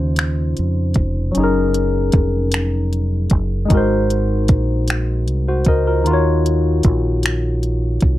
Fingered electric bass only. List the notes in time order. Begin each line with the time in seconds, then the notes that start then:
Already playing: D#2
0.59 F2
0.96 F1
1.37 F#1
2.14 F1
3.32 F#1
3.71 G#1
4.49 A#1
5.29 C2
5.67 C#2
6.07 D#2
6.85 A#1
8.03 C2